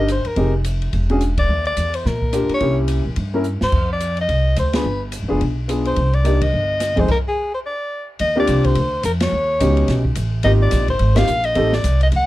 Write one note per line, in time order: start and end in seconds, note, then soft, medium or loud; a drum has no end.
0.00 0.22 G1 medium
0.08 0.28 C5 medium
0.08 cross-stick soft
0.08 hi-hat pedal medium
0.08 ride medium
0.25 0.54 A#4 medium
0.25 muted upright bass stroke soft
0.25 ride soft
0.36 0.90 F1 medium
0.36 0.51 C4 medium
0.36 0.52 D#4 medium
0.36 0.52 G4 medium
0.36 0.52 G#4 medium
0.36 kick soft
0.36 ride soft
0.64 hi-hat pedal medium
0.64 ride medium
0.82 ride soft
0.93 1.46 E1 medium
0.93 kick soft
0.93 ride soft
1.10 1.20 C#4 medium
1.10 1.20 D4 medium
1.10 1.20 F#4 medium
1.10 1.20 G#4 medium
1.10 ride soft
1.21 cross-stick medium
1.21 hi-hat pedal soft
1.21 ride medium
1.38 1.64 D5 loud
1.38 kick medium
1.38 ride medium
1.49 1.75 D#2 medium
1.65 1.97 D5 medium
1.65 ride soft
1.77 2.03 E2 medium
1.77 hi-hat pedal medium
1.77 ride medium
1.94 2.08 C5 medium
1.94 ride medium
2.05 2.47 A#2 medium
2.05 2.50 A#4 medium
2.05 kick soft
2.05 snare soft
2.22 kick soft
2.33 2.59 A#3 medium
2.33 2.61 D4 medium
2.33 2.61 F4 medium
2.33 2.60 G4 medium
2.33 cross-stick medium
2.33 hi-hat pedal medium
2.33 ride medium
2.49 muted upright bass stroke soft
2.49 ride soft
2.54 2.78 C#5 medium
2.60 3.02 C2 medium
2.60 3.02 A#3 medium
2.60 3.02 C#4 soft
2.60 3.02 E4 soft
2.60 3.02 G4 medium
2.60 kick soft
2.60 ride soft
2.88 hi-hat pedal soft
2.88 ride medium
3.06 3.16 A#1 medium
3.16 3.58 G2 medium
3.16 kick soft
3.16 ride medium
3.34 3.44 A#3 medium
3.34 3.44 C#4 medium
3.34 3.44 E4 medium
3.34 3.44 A#4 medium
3.44 hi-hat pedal soft
3.61 3.72 G2 medium
3.61 3.88 C5 medium
3.61 snare medium
3.72 4.26 F2 medium
3.72 kick medium
3.72 crash medium
3.93 4.17 D5 medium
4.00 hi-hat pedal medium
4.00 ride medium
4.17 ride soft
4.21 4.56 D#5 medium
4.29 4.55 C2 medium
4.29 kick soft
4.29 ride medium
4.56 4.83 D2 medium
4.56 4.77 C5 medium
4.56 cross-stick medium
4.56 hi-hat pedal soft
4.56 ride medium
4.73 4.83 B3 medium
4.73 4.84 D4 medium
4.73 4.83 F4 medium
4.73 4.84 G#4 medium
4.73 5.02 B4 medium
4.73 snare medium
4.73 ride medium
4.84 5.19 G1 medium
5.12 hi-hat pedal medium
5.12 ride medium
5.23 5.30 G#1 medium
5.28 5.40 F1 medium
5.28 5.39 B3 medium
5.28 5.39 D4 medium
5.28 5.39 F4 medium
5.28 5.40 G#4 medium
5.40 5.94 B1 medium
5.40 kick soft
5.40 ride medium
5.68 5.96 B3 medium
5.68 5.96 D4 soft
5.68 5.96 F4 medium
5.68 5.97 G#4 medium
5.68 cross-stick medium
5.68 hi-hat pedal soft
5.68 ride medium
5.85 6.16 C5 medium
5.85 ride soft
5.96 6.50 C2 medium
5.96 kick soft
5.96 ride medium
6.13 6.45 D5 medium
6.13 ride soft
6.24 6.39 A#3 medium
6.24 6.39 D4 medium
6.24 6.40 D#4 medium
6.24 6.40 G4 medium
6.24 hi-hat pedal medium
6.24 ride medium
6.41 7.01 D#5 medium
6.41 kick medium
6.41 ride medium
6.53 6.94 G1 medium
6.80 cross-stick medium
6.80 snare soft
6.80 hi-hat pedal medium
6.80 ride medium
6.96 7.08 F#1 medium
6.96 7.07 F2 medium
6.96 7.07 G#3 medium
6.96 7.07 C4 medium
6.96 7.07 D#4 medium
6.96 7.07 G#4 medium
6.96 kick soft
6.96 ride soft
7.00 7.10 C5 medium
7.08 7.18 A#4 medium
7.08 kick medium
7.08 crash medium
7.28 7.53 G#4 medium
7.55 7.59 C5 medium
7.66 8.07 D5 medium
8.19 8.47 D#2 medium
8.19 8.36 D#5 loud
8.19 kick soft
8.19 ride medium
8.36 8.73 A#3 medium
8.36 8.74 C4 medium
8.36 8.74 D4 medium
8.36 8.74 F4 medium
8.36 8.74 G4 medium
8.40 8.67 D5 medium
8.47 8.75 C2 medium
8.47 kick soft
8.47 hi-hat pedal medium
8.47 ride medium
8.64 9.04 C5 medium
8.64 kick medium
8.64 ride soft
8.75 9.03 D2 medium
8.75 ride medium
9.03 9.31 F2 medium
9.03 9.13 A#4 medium
9.03 kick soft
9.03 hi-hat pedal medium
9.03 ride medium
9.20 10.02 C#5 medium
9.20 snare medium
9.20 ride medium
9.32 9.59 D#2 medium
9.60 9.88 C#2 medium
9.60 10.01 B3 medium
9.60 10.01 C#4 medium
9.60 10.01 D#4 medium
9.60 10.02 F#4 medium
9.60 10.02 G4 medium
9.60 kick soft
9.60 hi-hat pedal medium
9.60 ride medium
9.77 ride soft
9.88 10.15 B1 medium
9.88 kick soft
9.88 snare soft
9.88 ride medium
10.05 kick medium
10.15 10.43 A1 medium
10.15 kick soft
10.15 hi-hat pedal medium
10.15 ride medium
10.43 10.71 G#1 medium
10.43 10.85 A#3 medium
10.43 10.85 C4 medium
10.43 10.86 D#4 medium
10.43 10.86 F4 medium
10.43 10.86 G4 medium
10.43 10.52 D#5 medium
10.43 kick soft
10.43 ride medium
10.62 10.87 D5 medium
10.71 10.99 A#1 medium
10.71 kick soft
10.71 snare soft
10.71 hi-hat pedal medium
10.71 ride medium
10.88 11.19 C5 medium
10.88 kick soft
10.88 ride soft
10.99 11.27 G#1 medium
10.99 kick soft
10.99 ride medium
11.15 11.26 A#3 medium
11.15 11.26 C4 medium
11.15 11.26 D#4 medium
11.15 11.26 F4 medium
11.15 11.27 G4 medium
11.15 11.47 F5 loud
11.15 snare medium
11.15 ride medium
11.27 11.55 A#1 medium
11.27 hi-hat pedal medium
11.44 11.76 D#5 medium
11.44 ride soft
11.55 11.83 A1 medium
11.55 11.70 A3 medium
11.55 11.70 C4 medium
11.55 11.71 D#4 medium
11.55 11.71 G4 medium
11.55 11.71 A4 medium
11.55 kick soft
11.55 ride medium
11.73 12.02 D5 medium
11.73 snare medium
11.84 12.11 C2 medium
11.84 kick soft
11.84 hi-hat pedal medium
11.84 ride medium
12.01 12.08 D#5 medium
12.01 ride soft
12.12 12.26 D2 medium
12.12 kick soft
12.12 ride medium
12.16 12.26 F#5 loud